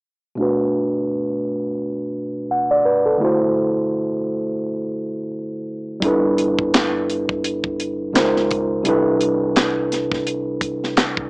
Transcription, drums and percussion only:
6.02 kick medium
6.02 closed hi-hat medium
6.38 closed hi-hat medium
6.59 kick medium
6.74 snare loud
6.74 clap medium
6.74 closed hi-hat medium
7.10 closed hi-hat medium
7.29 kick medium
7.44 closed hi-hat medium
7.64 kick medium
7.80 closed hi-hat medium
8.15 snare medium
8.15 clap medium
8.15 closed hi-hat medium
8.36 snare soft
8.51 kick medium
8.51 closed hi-hat medium
8.85 closed hi-hat medium
9.21 closed hi-hat medium
9.56 snare medium
9.56 clap medium
9.56 closed hi-hat medium
9.92 snare soft
9.92 closed hi-hat medium
10.11 kick medium
10.11 snare soft
10.27 closed hi-hat medium
10.61 kick medium
10.61 closed hi-hat medium
10.84 snare soft
10.97 snare medium
10.97 clap medium
10.97 closed hi-hat medium
11.17 kick medium

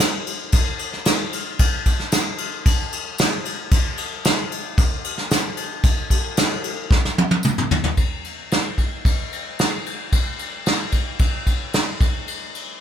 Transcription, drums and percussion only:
0.00 snare loud
0.00 tambourine loud
0.27 crash medium
0.52 kick loud
0.52 crash loud
0.79 crash medium
0.93 snare soft
1.05 snare loud
1.05 tambourine medium
1.05 crash medium
1.33 crash medium
1.59 kick loud
1.59 crash medium
1.86 kick medium
1.86 crash medium
2.00 snare soft
2.12 snare loud
2.12 tambourine loud
2.12 crash medium
2.38 crash medium
2.66 kick loud
2.66 crash loud
2.92 crash medium
3.18 snare loud
3.18 tambourine medium
3.18 crash medium
3.45 crash medium
3.71 kick loud
3.71 crash medium
3.98 crash medium
4.25 snare loud
4.25 tambourine medium
4.25 crash medium
4.52 crash medium
4.78 kick loud
4.78 crash medium
5.04 crash medium
5.18 snare soft
5.31 snare loud
5.31 tambourine medium
5.31 crash medium
5.57 crash medium
5.83 kick loud
5.83 crash medium
6.10 kick medium
6.10 crash medium
6.37 snare loud
6.37 tambourine loud
6.37 crash medium
6.64 crash medium
6.91 kick loud
6.91 snare medium
7.05 snare medium
7.18 high tom medium
7.31 high tom medium
7.43 mid tom loud
7.43 tambourine medium
7.58 mid tom loud
7.71 floor tom loud
7.84 floor tom loud
7.97 kick medium
7.97 ride medium
8.24 ride medium
8.51 snare medium
8.51 ride medium
8.78 kick medium
8.78 ride medium
9.05 kick loud
9.05 ride medium
9.32 ride medium
9.59 snare loud
9.59 ride medium
9.86 ride medium
10.12 kick medium
10.12 ride medium
10.39 ride medium
10.66 snare loud
10.66 ride medium
10.92 kick medium
10.92 ride medium
11.19 kick loud
11.19 ride medium
11.47 kick medium
11.47 ride medium
11.73 snare loud
11.73 ride medium
12.01 kick loud
12.01 ride medium
12.28 ride medium
12.55 ride medium

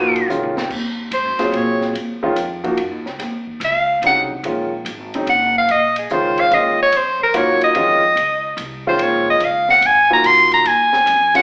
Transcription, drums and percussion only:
0.16 ride soft
0.30 floor tom soft
0.30 hi-hat pedal medium
0.43 floor tom medium
0.57 snare medium
0.70 kick medium
0.70 crash medium
1.12 hi-hat pedal medium
1.12 ride medium
1.39 snare medium
1.39 ride soft
1.53 ride medium
1.81 snare soft
1.95 ride medium
2.36 hi-hat pedal medium
2.36 ride medium
2.64 kick medium
2.64 ride soft
2.77 ride medium
3.06 snare soft
3.19 snare soft
3.19 ride medium
3.47 kick medium
3.61 hi-hat pedal medium
3.61 ride medium
4.03 ride medium
4.30 kick soft
4.44 ride medium
4.86 hi-hat pedal medium
4.86 ride medium
5.14 ride soft
5.27 ride medium
5.69 ride medium
5.96 ride medium
6.10 hi-hat pedal medium
6.38 ride soft
6.51 ride medium
6.92 ride medium
7.20 kick medium
7.34 hi-hat pedal medium
7.34 ride medium
7.61 ride medium
7.75 ride medium
8.17 ride medium
8.58 hi-hat pedal medium
8.58 ride medium
8.99 ride medium
9.40 ride medium
9.69 snare soft
9.82 hi-hat pedal medium
9.82 ride medium
10.24 hi-hat pedal medium
10.24 ride medium
10.52 ride medium
10.65 ride medium
10.93 snare medium
11.07 hi-hat pedal medium
11.07 ride medium
11.35 ride medium

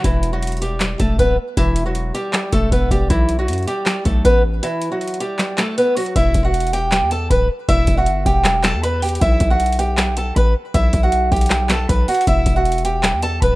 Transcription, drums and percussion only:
0.04 kick loud
0.04 closed hi-hat medium
0.23 closed hi-hat medium
0.42 closed hi-hat medium
0.47 closed hi-hat medium
0.52 closed hi-hat medium
0.57 closed hi-hat soft
0.62 closed hi-hat medium
0.80 snare loud
0.80 clap medium
0.80 closed hi-hat medium
1.00 kick loud
1.00 closed hi-hat medium
1.19 kick loud
1.19 closed hi-hat medium
1.57 kick loud
1.57 closed hi-hat medium
1.76 closed hi-hat medium
1.95 closed hi-hat medium
2.15 closed hi-hat medium
2.33 snare loud
2.33 clap medium
2.33 closed hi-hat medium
2.52 kick loud
2.52 closed hi-hat medium
2.72 kick loud
2.72 closed hi-hat medium
2.91 kick medium
2.91 closed hi-hat medium
3.10 kick loud
3.10 closed hi-hat medium
3.29 closed hi-hat medium
3.48 closed hi-hat medium
3.53 closed hi-hat medium
3.58 closed hi-hat medium
3.63 closed hi-hat soft
3.68 closed hi-hat medium
3.86 snare loud
3.86 clap medium
3.86 closed hi-hat medium
4.05 kick loud
4.05 closed hi-hat medium
4.25 kick loud
4.25 closed hi-hat medium
4.63 closed hi-hat medium
4.82 closed hi-hat medium
5.01 closed hi-hat medium
5.08 closed hi-hat medium
5.14 closed hi-hat medium
5.20 closed hi-hat medium
5.39 snare loud
5.39 clap medium
5.39 closed hi-hat medium
5.58 snare loud
5.58 clap medium
5.58 closed hi-hat medium
5.78 closed hi-hat medium
5.97 closed hi-hat medium
5.97 open hi-hat medium
6.06 closed hi-hat soft
6.16 kick loud
6.16 closed hi-hat medium
6.34 kick loud
6.34 closed hi-hat medium
6.54 closed hi-hat medium
6.60 closed hi-hat medium
6.67 closed hi-hat medium
6.73 closed hi-hat medium
6.92 snare loud
6.92 clap medium
6.92 closed hi-hat medium
7.11 closed hi-hat medium
7.30 kick loud
7.30 closed hi-hat medium
7.69 kick loud
7.69 closed hi-hat medium
7.87 kick loud
7.87 closed hi-hat medium
8.06 closed hi-hat medium
8.26 kick loud
8.26 closed hi-hat medium
8.45 snare loud
8.45 clap medium
8.45 closed hi-hat medium
8.64 snare loud
8.64 clap medium
8.64 closed hi-hat medium
8.84 closed hi-hat medium
9.02 closed hi-hat medium
9.02 open hi-hat medium
9.09 closed hi-hat medium
9.15 closed hi-hat medium
9.21 kick loud
9.21 closed hi-hat medium
9.40 kick loud
9.40 closed hi-hat medium
9.60 closed hi-hat medium
9.66 closed hi-hat medium
9.72 closed hi-hat medium
9.79 closed hi-hat medium
9.97 snare loud
9.97 clap medium
9.97 closed hi-hat medium
10.17 closed hi-hat medium
10.36 kick loud
10.36 closed hi-hat medium
10.74 kick loud
10.74 closed hi-hat medium
10.93 kick loud
10.93 closed hi-hat medium
11.12 closed hi-hat medium
11.32 kick loud
11.32 closed hi-hat medium
11.36 closed hi-hat medium
11.41 closed hi-hat medium
11.46 closed hi-hat medium
11.50 snare loud
11.50 clap medium
11.50 closed hi-hat medium
11.69 snare loud
11.69 clap medium
11.69 closed hi-hat medium
11.89 kick loud
11.89 closed hi-hat medium
12.08 closed hi-hat medium
12.08 open hi-hat medium
12.15 closed hi-hat medium
12.21 closed hi-hat medium
12.27 kick loud
12.27 closed hi-hat medium
12.46 kick loud
12.46 closed hi-hat medium
12.65 closed hi-hat medium
12.72 closed hi-hat medium
12.78 closed hi-hat medium
12.85 closed hi-hat medium
13.03 snare loud
13.03 clap medium
13.03 closed hi-hat medium
13.22 closed hi-hat medium
13.42 kick loud
13.42 closed hi-hat medium

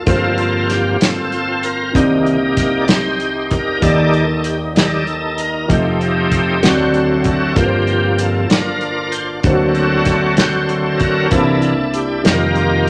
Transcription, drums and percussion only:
0.07 kick medium
0.07 closed hi-hat medium
0.38 closed hi-hat soft
0.70 snare soft
0.70 closed hi-hat medium
1.01 snare medium
1.01 closed hi-hat medium
1.32 closed hi-hat soft
1.63 closed hi-hat medium
1.95 kick medium
1.95 closed hi-hat medium
2.26 closed hi-hat soft
2.57 kick medium
2.57 snare soft
2.57 closed hi-hat medium
2.88 snare medium
2.88 closed hi-hat medium
3.20 closed hi-hat soft
3.51 kick medium
3.51 closed hi-hat medium
3.82 kick medium
3.82 closed hi-hat medium
4.13 closed hi-hat soft
4.44 closed hi-hat medium
4.76 snare medium
4.76 closed hi-hat medium
5.07 closed hi-hat soft
5.38 closed hi-hat medium
5.70 kick medium
5.70 closed hi-hat medium
6.01 closed hi-hat soft
6.32 kick medium
6.32 closed hi-hat medium
6.63 snare medium
6.63 closed hi-hat medium
6.94 closed hi-hat soft
7.24 kick medium
7.24 closed hi-hat soft
7.56 kick medium
7.56 closed hi-hat medium
7.87 closed hi-hat soft
8.19 closed hi-hat medium
8.50 snare medium
8.50 closed hi-hat medium
8.81 closed hi-hat soft
9.12 closed hi-hat medium
9.43 kick medium
9.43 closed hi-hat medium
9.75 closed hi-hat soft
10.05 kick medium
10.05 snare soft
10.05 closed hi-hat medium
10.37 snare medium
10.37 closed hi-hat medium
10.69 closed hi-hat soft
10.99 kick medium
10.99 closed hi-hat medium
11.31 kick medium
11.31 closed hi-hat medium
11.62 closed hi-hat soft
11.94 closed hi-hat medium
12.25 snare medium
12.25 closed hi-hat medium
12.56 closed hi-hat soft

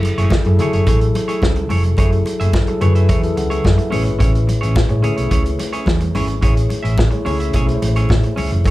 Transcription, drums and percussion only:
0.03 closed hi-hat medium
0.03 muted conga soft
0.18 closed hi-hat soft
0.30 kick loud
0.30 snare loud
0.30 high conga medium
0.45 closed hi-hat soft
0.59 closed hi-hat medium
0.59 low conga medium
0.73 closed hi-hat medium
0.87 kick loud
0.87 closed hi-hat medium
0.87 muted conga soft
1.01 closed hi-hat soft
1.15 closed hi-hat medium
1.15 muted conga soft
1.29 closed hi-hat soft
1.42 kick loud
1.42 snare loud
1.42 high conga medium
1.56 closed hi-hat soft
1.70 open hi-hat medium
1.70 high conga medium
1.83 closed hi-hat soft
1.97 kick loud
1.97 closed hi-hat medium
1.97 muted conga soft
2.13 closed hi-hat soft
2.26 closed hi-hat medium
2.26 muted conga soft
2.41 closed hi-hat soft
2.54 kick loud
2.54 snare loud
2.54 high conga medium
2.67 closed hi-hat soft
2.81 closed hi-hat medium
2.81 low conga medium
2.95 closed hi-hat soft
3.09 kick loud
3.09 closed hi-hat medium
3.09 muted conga soft
3.23 closed hi-hat soft
3.37 closed hi-hat medium
3.37 muted conga soft
3.51 closed hi-hat soft
3.64 kick loud
3.64 snare medium
3.64 high conga medium
3.78 closed hi-hat soft
3.92 open hi-hat medium
3.92 high conga medium
4.06 closed hi-hat soft
4.20 kick loud
4.20 closed hi-hat medium
4.20 muted conga soft
4.35 closed hi-hat soft
4.49 closed hi-hat medium
4.49 muted conga medium
4.63 closed hi-hat soft
4.76 kick loud
4.76 snare loud
4.76 high conga medium
4.89 closed hi-hat soft
5.04 closed hi-hat medium
5.04 low conga medium
5.18 closed hi-hat medium
5.31 kick loud
5.31 closed hi-hat medium
5.31 muted conga soft
5.46 closed hi-hat soft
5.59 closed hi-hat medium
5.59 muted conga medium
5.73 closed hi-hat soft
5.86 kick loud
5.86 snare loud
5.86 high conga medium
6.00 closed hi-hat soft
6.15 open hi-hat medium
6.15 high conga medium
6.28 closed hi-hat soft
6.42 kick loud
6.42 closed hi-hat medium
6.57 closed hi-hat soft
6.70 closed hi-hat medium
6.70 muted conga medium
6.85 closed hi-hat soft
6.98 kick loud
6.98 snare loud
6.98 high conga medium
7.11 closed hi-hat soft
7.26 open hi-hat medium
7.26 low conga medium
7.40 closed hi-hat medium
7.53 kick loud
7.53 closed hi-hat medium
7.53 muted conga medium
7.69 closed hi-hat soft
7.82 closed hi-hat medium
7.82 muted conga soft
7.96 closed hi-hat soft
8.09 kick loud
8.09 snare medium
8.09 high conga medium
8.23 closed hi-hat soft
8.37 open hi-hat medium
8.37 high conga medium
8.51 closed hi-hat soft
8.64 kick loud
8.64 closed hi-hat medium
8.64 muted conga soft

